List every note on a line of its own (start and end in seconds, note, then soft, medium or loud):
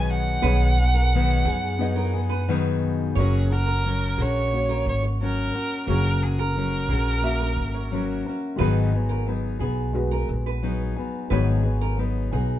0.00 0.39 B1 medium
0.00 0.43 B2 medium
0.00 0.42 D#3 medium
0.00 0.44 F#3 medium
0.00 0.42 B3 medium
0.00 0.44 B3 medium
0.00 0.44 D#4 medium
0.00 0.43 G#4 medium
0.00 0.44 G#4 medium
0.00 1.81 D#5 medium
0.00 0.12 G#5 loud
0.10 2.48 F#5 loud
0.42 1.41 B1 medium
0.42 0.78 B2 medium
0.42 0.77 D#3 medium
0.42 0.78 F#3 medium
0.42 1.31 B3 medium
0.42 0.78 B3 medium
0.42 0.78 D#4 medium
0.42 1.32 G#4 medium
0.42 0.78 G#4 medium
0.42 0.59 B4 loud
0.42 1.32 C#5 medium
0.79 1.13 F#3 soft
0.79 1.13 B3 soft
0.79 1.12 D#4 soft
0.79 1.12 G#4 medium
0.94 1.10 A#4 medium
1.15 1.47 B2 medium
1.15 1.47 D#3 medium
1.15 1.47 F#3 medium
1.15 1.46 B3 medium
1.15 1.45 D#4 medium
1.15 1.44 G#4 medium
1.44 3.11 F#2 medium
1.44 1.78 F#3 soft
1.44 1.79 B3 medium
1.44 1.80 D#4 medium
1.44 1.77 G#4 medium
1.44 1.79 G#4 medium
1.79 2.13 F#3 medium
1.79 2.68 B3 medium
1.79 2.14 B3 medium
1.79 2.13 D#4 medium
1.79 2.68 G#4 medium
1.79 2.12 G#4 medium
1.79 2.69 D#5 loud
1.96 2.12 A#4 medium
2.13 2.47 F#3 soft
2.13 2.48 B3 soft
2.13 2.48 D#4 medium
2.13 2.47 G#4 medium
2.29 2.62 B4 medium
2.48 3.16 B2 medium
2.48 3.16 D#3 loud
2.48 3.18 F#3 medium
2.48 3.16 B3 loud
2.48 3.16 D#4 medium
2.48 3.16 G#4 loud
3.15 4.14 F#1 medium
3.15 3.51 F#3 medium
3.15 4.04 A#3 medium
3.15 3.51 C#4 medium
3.15 4.04 F#4 medium
3.15 3.50 F#4 medium
3.15 3.54 G#4 medium
3.15 3.31 C#5 loud
3.15 4.05 C#5 medium
3.20 3.49 A#4 medium
3.50 3.85 C#4 soft
3.50 3.84 F#4 soft
3.50 3.84 A#4 medium
3.50 4.23 A#4 medium
3.66 3.82 A#4 medium
3.85 4.18 F#3 medium
3.85 4.18 C#4 soft
3.85 4.19 F#4 medium
3.85 4.18 A#4 medium
4.18 4.81 A#1 medium
4.18 5.21 C#4 soft
4.18 5.23 F#4 soft
4.18 4.50 G#4 medium
4.18 5.20 A#4 medium
4.18 4.87 C#5 loud
4.52 5.40 A#3 medium
4.52 5.41 F#4 medium
4.52 5.41 C#5 medium
4.69 4.85 A#4 medium
4.86 5.49 G#1 medium
4.86 5.03 C#5 medium
5.03 5.35 C#5 medium
5.21 5.54 F#3 medium
5.21 5.55 C#4 medium
5.21 5.54 F#4 medium
5.21 5.85 A#4 medium
5.21 5.52 A#4 medium
5.54 5.88 C#4 soft
5.54 5.88 F#4 soft
5.54 5.87 A#4 soft
5.86 6.85 F#1 medium
5.86 6.22 F#3 medium
5.86 6.75 A#3 medium
5.86 6.22 C#4 medium
5.86 6.76 F#4 medium
5.86 6.22 F#4 medium
5.86 6.76 G#4 medium
5.86 6.24 A#4 loud
5.86 6.04 C#5 medium
5.91 6.22 A#4 medium
6.23 6.56 C#4 soft
6.23 6.56 F#4 soft
6.23 6.41 G#4 medium
6.23 6.56 A#4 medium
6.39 6.55 A#4 medium
6.39 8.25 A#4 medium
6.57 6.90 F#3 medium
6.57 6.90 C#4 medium
6.57 6.91 F#4 medium
6.57 6.90 A#4 medium
6.89 7.53 A#1 medium
6.89 7.93 F#4 soft
6.89 7.22 G#4 medium
6.89 7.92 A#4 medium
6.93 7.91 C#4 soft
7.22 8.11 A#3 medium
7.22 8.11 F#4 medium
7.22 8.12 E5 loud
7.40 7.56 A#4 medium
7.57 8.21 G#1 medium
7.74 8.06 C#5 medium
7.91 8.25 F#3 medium
7.91 8.26 C#4 medium
7.91 8.26 F#4 medium
7.91 8.25 A#4 medium
8.26 8.60 C#4 soft
8.26 8.60 F#4 soft
8.26 8.59 A#4 medium
8.56 9.56 G#1 loud
8.56 8.93 G#2 medium
8.56 8.93 D#3 medium
8.56 8.93 F#3 medium
8.56 9.46 G#3 medium
8.56 9.46 F#4 medium
8.56 8.65 A#4 medium
8.56 8.75 B4 medium
8.60 8.93 B3 medium
8.60 8.92 D#4 medium
8.60 8.91 G#4 loud
8.65 9.50 B4 medium
8.93 9.25 F#3 medium
8.93 9.26 B3 medium
8.93 9.27 D#4 medium
8.93 9.27 G#4 medium
9.09 9.26 A#4 medium
9.26 9.60 F#3 medium
9.26 9.60 B3 medium
9.26 9.59 D#4 medium
9.26 9.58 G#4 medium
9.59 10.24 B1 medium
9.59 10.62 F#3 soft
9.59 10.62 B3 medium
9.59 10.62 D#4 medium
9.59 10.62 G#4 medium
9.59 9.93 G#4 medium
9.93 10.82 G#3 medium
9.93 10.83 F#4 medium
9.93 10.83 B4 medium
10.11 10.28 A#4 medium
10.29 10.93 A#1 medium
10.46 10.78 B4 medium
10.63 10.97 F#3 medium
10.63 10.97 B3 medium
10.63 10.95 D#4 medium
10.63 10.95 G#4 medium
10.96 11.30 F#3 soft
10.96 11.30 B3 soft
10.96 11.30 D#4 medium
10.96 11.30 G#4 medium
11.30 12.28 G#1 medium
11.30 11.65 G#2 medium
11.30 11.65 D#3 medium
11.30 11.65 F#3 medium
11.30 12.19 G#3 medium
11.30 11.64 B3 medium
11.30 11.63 D#4 loud
11.30 12.19 F#4 medium
11.30 11.62 G#4 medium
11.30 11.46 B4 medium
11.30 12.20 C#5 medium
11.63 11.95 F#3 soft
11.63 11.97 B3 soft
11.63 11.98 D#4 medium
11.63 11.98 G#4 medium
11.81 11.97 A#4 medium
11.97 12.31 F#3 medium
11.97 12.32 B3 medium
11.97 12.31 D#4 medium
11.97 12.30 G#4 medium
12.31 12.59 B1 medium
12.31 12.59 F#3 medium
12.31 12.59 B3 medium
12.31 12.59 D#4 medium
12.31 12.59 G#4 medium